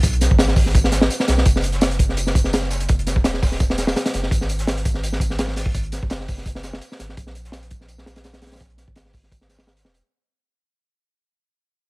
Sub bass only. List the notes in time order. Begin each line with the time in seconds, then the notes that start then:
0.03 B1
0.31 G#1
1.28 B1
1.46 F#1
2.90 F#1
3.16 E1
4.14 F#1
4.31 G#1
5.75 G#1
6.03 F#1
7.00 G#1
7.17 A#1
8.61 A#1
8.88 G#1
9.85 E1